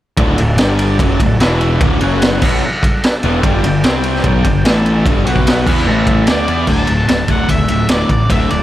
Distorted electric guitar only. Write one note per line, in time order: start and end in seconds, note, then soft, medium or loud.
0.18 0.37 D2 loud
0.18 0.38 A2 medium
0.18 0.38 D3 loud
0.39 0.55 D2 medium
0.39 0.55 A2 medium
0.59 0.99 G2 medium
0.59 0.99 D3 loud
0.59 1.00 G3 loud
1.00 1.20 F#2 medium
1.00 1.20 C#3 loud
1.00 1.20 F#3 loud
1.21 1.37 D2 medium
1.21 1.37 A2 medium
1.42 1.81 E2 medium
1.42 1.81 B2 loud
1.42 1.82 E3 loud
1.81 2.01 D2 loud
1.81 2.01 A2 loud
1.81 2.02 D3 loud
2.01 2.42 F#2 medium
2.01 2.42 C#3 medium
2.01 2.42 F#3 loud
2.42 2.62 B2 loud
2.42 2.62 F#3 loud
2.42 2.62 B3 loud
3.24 3.43 E2 medium
3.24 3.44 B2 loud
3.24 3.44 E3 loud
3.44 3.64 G2 loud
3.44 3.64 D3 medium
3.44 3.64 G3 loud
3.65 3.81 G2 medium
3.65 3.81 D3 medium
3.84 4.24 C3 medium
3.84 4.24 G3 medium
3.84 4.25 C4 loud
4.24 4.44 B2 loud
4.24 4.44 F#3 loud
4.24 4.45 B3 loud
4.45 4.61 G2 medium
4.45 4.61 D3 medium
4.65 5.05 A2 loud
4.65 5.05 E3 loud
4.65 5.06 A3 loud
5.05 5.25 G2 medium
5.05 5.25 D3 loud
5.05 5.26 G3 loud
5.26 5.66 B2 medium
5.26 5.66 F#3 loud
5.26 5.66 B3 loud
5.67 5.86 E3 loud
5.67 5.87 B3 loud
5.67 5.87 E4 medium
5.86 6.26 A2 loud
5.86 6.26 E3 loud
5.86 6.27 A3 loud
6.27 6.47 D3 loud
6.27 6.47 A3 loud
6.27 6.47 D4 loud
6.47 6.67 E3 medium
6.47 6.67 B3 medium
6.47 6.68 E4 medium
6.67 6.86 D2 medium
6.67 6.87 A2 medium
6.67 6.87 D3 medium
6.88 7.06 D2 medium
6.88 7.06 A2 medium
7.08 7.26 D2 medium
7.08 7.27 A2 medium
7.28 7.47 D2 medium
7.28 7.48 A2 loud
7.28 7.48 D3 medium
7.50 7.67 D2 medium
7.50 7.67 A2 medium
7.70 7.88 D2 medium
7.70 7.88 A2 medium
7.90 8.09 D2 loud
7.90 8.09 A2 loud
7.90 8.09 D3 loud
8.10 8.28 D2 medium
8.10 8.28 A2 medium
8.30 8.49 D2 loud
8.30 8.49 A2 loud
8.30 8.50 D3 loud
8.50 8.63 D2 medium
8.50 8.63 A2 medium